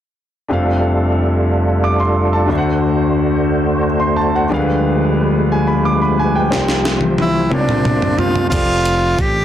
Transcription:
0.48 grand piano F1 F2 D4 G4 A4 C5, tonewheel organ G3 D4 F4 A4
0.53 grand piano F5
1.84 grand piano D6
2.00 grand piano C6
2.33 grand piano A5
2.46 grand piano D2 D3 D4 F#4 A4 C5
2.51 tonewheel organ A3 F#4 C5, grand piano E5
2.58 grand piano F#5
4.00 grand piano C6
4.16 grand piano A5
4.35 grand piano F#5
4.49 grand piano D2 D3 D4 G4 G#4 A#4, tonewheel organ D3 F3 G3 G#3 B4
4.54 grand piano F5
4.59 grand piano B4
5.52 grand piano G#5
5.67 grand piano B5
5.85 grand piano D6
6.02 grand piano B5
6.19 grand piano G#5
6.36 grand piano G5
6.50 grand piano C2 C3 F3 C4 G4 A#4 G5, tonewheel organ A#3 C5, snare
6.68 snare
6.85 snare
7.01 high tom
7.18 tenor saxophone E4, high tom
7.50 grand piano C2 C3 C4 F4 G4 A#4 C#5, tonewheel organ D4 F4 C5, tenor saxophone D4, mid tom
7.59 grand piano D5
7.69 mid tom
7.85 mid tom
8.02 floor tom
8.18 tenor saxophone F4, floor tom
8.35 floor tom
8.50 fingered electric bass F1, grand piano C4 F4 G4 A4 D5, tenor saxophone F4, kick, closed hi-hat, crash
8.85 closed hi-hat
9.18 fingered electric bass A1, tenor saxophone G4, kick, closed hi-hat

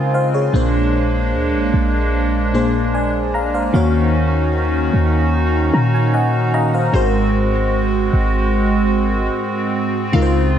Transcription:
Already playing: 808-style bass C#3, analog synth pad C#3 C4 F4, fm electric piano A#4 C5 D#5 F5 G#5
0.14 fm electric piano C5 F5
0.34 fm electric piano G#4 C#5
0.53 808-style bass A#1, fm electric piano A#2 A#3 D4 G#4 C5, analog synth pad G#3 A#3 D4
1.34 808-style bass D2
1.54 808-style bass A#1
1.74 808-style bass A#1
2.53 fm electric piano A#2 A#3 D4 G#4 C5
2.94 fm electric piano D5 G#5
3.34 fm electric piano F5 A#5
3.54 fm electric piano C5 F5
3.73 808-style bass D#2, fm electric piano D#3 A#3 F#4 C#5 F5, analog synth pad D#3 C#4 D#4 F#4
4.93 808-style bass D#2
5.73 808-style bass A#2, fm electric piano A#5
5.94 fm electric piano G#5
6.14 fm electric piano D#5 F#5 G#5
6.54 fm electric piano D#5 F5 A#5
6.74 fm electric piano C5 F5
6.93 808-style bass G#1, fm electric piano G#2 G#3 F#4 A#4 C5, analog synth pad G#3 C4 F#4, synth pluck C5
8.13 808-style bass G#1
10.12 808-style bass C#2, fm electric piano C#3 G#3 D#4 F4 A#4, analog synth pad C#3 F4, synth pluck F5
10.22 fm electric piano C5

